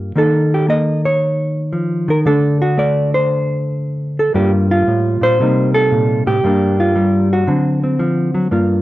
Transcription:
hollow-body jazz guitar
Already playing: G2 G3 A#3 F4 A#4
0.16 D#3 A#3 D#4 A4
0.54 G4
0.68 A#3 D#5
1.05 C#5
1.73 F3
2.08 D#3 A#4
2.25 D3 A3 D4 A4
2.62 F#4
2.77 A3 D5
3.14 C5
4.19 A4
4.34 G2 G3 A#3 F4 G4
4.71 F4
4.87 A2
5.21 A#2 C5
5.40 C3 G3 A#3 D#4
5.74 A4
5.91 A#2
6.27 A2 G4
6.44 G2 G3 A#3 D4
6.80 F4
6.96 G3
7.33 F#4
7.47 D3 F#3 C4
7.84 C4
7.99 F3
8.34 F#3
8.51 G2 A#3 F4

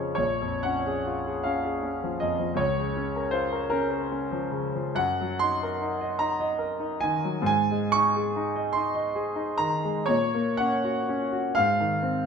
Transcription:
grand piano
Already playing: F2 C#3 F3 C#4 F4 G#4 C#5 D#5
0.15 A#1 C#5
0.42 F2
0.63 C#4 F#5
0.87 G#4
1.07 F4
1.27 G#4
1.44 C#4 F5
1.65 G#4
1.83 C#4
2.03 F3
2.20 F2 D#5
2.39 F3
2.54 C#2 C#5
2.79 C#3
2.97 C#4
3.16 A#4
3.31 F4 C5
3.52 A#4
3.70 C#4 A#4
3.91 A#4
4.12 C#4
4.32 F3
4.51 C#3
4.74 F3
4.95 F#2 F#5
5.21 F#3
5.39 D#4 C6
5.63 A#4
5.81 D#4
6.01 D#5
6.19 D#4 A#5
6.40 D#5
6.59 A#4
6.80 D#4
7.01 D#3 G#5
7.24 F#3
7.42 G#2
7.46 G#5
7.72 G#3
7.92 D#4 C#6
8.16 G#4
8.36 D#4
8.56 D#5
8.73 D#4 C6
8.95 D#5
9.16 G#4
9.36 D#4
9.58 D#3 A#5
9.84 G#3
10.06 A#2 C#5
10.34 A#3
10.57 C#4 F#5
10.84 F#4
11.09 C#4
11.32 F#4
11.55 G#2 F5
11.80 D#3
12.03 C4

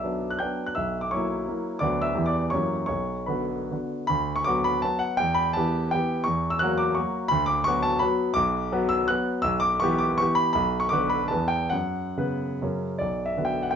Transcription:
grand piano
Already playing: B1 D5 E5 D6 E6
0.03 F#3 B3 D4
0.31 F#6
0.39 F#3 B3 D4 G5 G6
0.67 F#6
0.75 B1 E5 E6
1.01 D6
1.11 F#3 A#3 E4 C#5 C#6
1.48 F#3 A#3 E4
1.79 D2 F#3 B3 F#4 D5 D6
2.02 E5 E6
2.15 E2 E3 B3 G4
2.26 D5 D6
2.50 F#2 E3 A#3 G4 C#5 C#6
2.86 B1 C#5 C#6
3.26 D3 B3 F#4 B4 B5
3.71 D3 B3 F#4
4.07 D2 B5
4.36 C#6
4.44 F#3 B3 F#4 D6
4.64 B5
4.82 F#3 B3 F#4 A5
4.99 F#5
5.17 E2 G5
5.34 B5
5.53 E3 B3 G4 A5
5.91 E3 B3 G4 G5
6.24 E2 C#6
6.50 E6
6.59 F#3 A#3 F#4 F#6
6.78 D6
6.95 F#3 A#3 F#4 C#6
7.28 D2 B5
7.46 D6
7.64 F#3 B3 F#4 C#6
7.83 A5
7.99 F#3 B3 F#4 B5
8.34 B1 D6
8.72 F#3 B3 F#4
8.89 E6
9.08 F#3 B3 F#4 F#6
9.42 B1 E6
9.60 D6
9.80 E3 B3 G4 C#6
9.99 D6
10.18 E3 B3 G4 C#6
10.35 B5
10.53 B1 B5
10.80 C#6
10.89 D3 B3 B4 D6
11.10 B5
11.28 E2 E3 B3 B4 A5
11.48 G5
11.70 F#2 F#5
12.17 C#3 B3 B4
12.62 F#2 C#3 C#4 A#4
12.98 B1 D5
13.26 E5
13.37 D3 B3 F#4
13.45 G5
13.63 F#5
13.71 G5

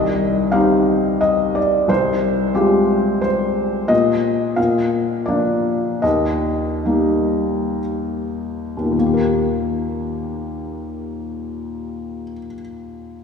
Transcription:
felt piano
Already playing: C2 D#5
0.52 C4 D#4 G4 F5
1.21 D#5
1.55 D5
1.88 C2 C5
2.55 G#3 C4 F4 G4
3.21 C5
3.88 A#2 D#5
4.56 A#2 F5
5.26 F3 A#3 D4 D5
6.02 D#2 D#5
6.85 G3 A#3 D#4
8.77 D#2
8.84 A#2
8.92 D#3
8.99 A#3
9.06 G4
9.14 A#4

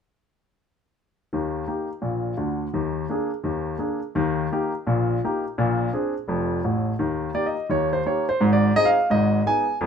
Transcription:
grand piano
1.33 D#2 D#3
1.67 A#3 D#4 G4
2.02 A#1 A#2
2.37 D2 D3
2.74 D#2 D#3
3.09 A#3 D4 G#4
3.44 D#2 D#3
3.78 A#3 D4 G#4
4.15 D#2 D#3
4.52 A#3 D#4 G4
4.87 A#1 A#2
5.24 A#3 D#4 G4
5.58 A#1 A#2
5.93 C4 D4 G#4
6.28 F1 F2
6.64 A1 A2
6.99 D#2 D#3
7.34 A#3 D#4 G4 D5
7.46 D#5
7.69 D#2 D#3 C#5
7.93 C5
8.06 A#3 D#4 G4 C#5
8.29 C5
8.41 G#1 G#2
8.53 D5
8.76 C4 D#4 G#4 D#5
8.85 F5
9.10 G#1 G#2 D#5
9.46 B3 D#4 G#4 G#5
9.81 F1 F2

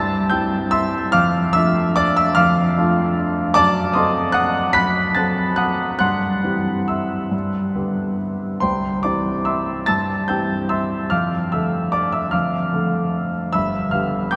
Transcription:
grand piano
Already playing: G2 A5 E6 A6
0.30 G3 C4 E4 G5 E6 G6
0.71 E5 C6 E6
1.12 F2 F5 D6 F6
1.53 A3 D4 F4 E5 E6
1.96 D5 D6
2.17 E5 E6
2.35 F2 F5 D6 F6
2.77 A3 D4 F4
3.54 F#2 D5 A5 D6
3.94 F#3 C4 A4 D#5 C6 D#6
4.32 F#5 D#6 F#6
4.73 F#2 B5 F#6 B6
5.15 F#3 C4 A4 A5 F#6 A6
5.56 F#5 D#6 F#6
5.99 G2 F#5 C6 F#6
6.43 E3 C4 G4
6.88 E5 C6 E6
7.31 G2
7.75 D3 B3 G4
8.60 C2 C5 G5 C6
9.03 E3 C4 G4 D5 D6
9.45 E5 C6 E6
9.86 G2 A5 E6 A6
10.28 E3 C4 G4 G5 E6 G6
10.69 E5 C6 E6
11.10 F2 F5 D6 F6
11.52 D3 A3 A4 E5 E6
11.92 D5 D6
12.12 E5 E6
12.31 F2 F5 D6 F6
12.73 D3 A3 A4
13.53 G1 E5 B5 E6
13.91 D3 B3 G4 F5 F6
14.31 G5 D6 G6

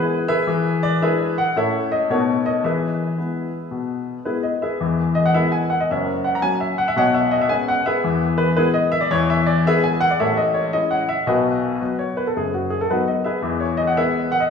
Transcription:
upright piano
Already playing: G#3 B3 E4 G#4 B4
0.28 G#4 B4 E5
0.47 E3 G#4
0.83 D5
1.01 G#3 D4 E4 G#4 B4 E5
1.38 F#5
1.56 A2 A3 C#4 E4 A4 C#5 E5
1.92 D#5
2.10 B2 A3 B3 D#4 F#4 A4 C#5
2.46 D#5
2.64 E3 G#4 B4 E5
3.18 G#3 B3 E4
3.71 B2
4.25 G#3 B3 E4 G#4 B4
4.43 D#5
4.62 G#4 B4 E5
4.80 E2 E3
5.15 D#5
5.26 F#5
5.34 G#3 B3 E4 G#4 B4 E5
5.52 G#5
5.70 F#5
5.80 D#5
5.90 F#1 F#2 A#4 C#5 E5
6.24 F#5
6.35 A#5
6.42 F#3 A#3 C#4 G#5
6.60 E5
6.78 F#5
6.88 E5
6.96 B1 B2 C#5 D#5 F#5
7.14 E5
7.31 D#5
7.41 E5
7.49 G#3 B3 C#4 G#5
7.68 F#5
7.86 G#4 B4 E5
8.04 E2 E3
8.38 B4
8.56 G#3 B3 E4 G#4 B4
8.74 D#5
8.92 E5
9.01 D5
9.11 E2 E3 C#5
9.30 E5
9.46 D5
9.66 G#3 B3 E4 G#4 B4 E5
9.84 G#5
10.00 F#5
10.11 D5
10.19 A1 A2 A4 C#5 E5
10.37 D#5
10.54 C#5
10.73 G#3 C#4 E4 D#5
10.91 F#5
11.09 E5
11.27 B1 B2 F#4 B4 D#5
11.81 F#3 B3
11.99 C#5
12.17 B4
12.27 A4
12.36 F#1 F#2 G#4
12.54 F#4
12.70 G#4
12.81 A4
12.90 F#3 B3 D#4 F#4 B4
13.08 D#5
13.24 G#4 B4 E5
13.42 E2 E3
13.60 C#5
13.77 D#5
13.87 F#5
13.96 G#3 B3 G#4 B4 E5
14.32 F#5
14.40 D#5

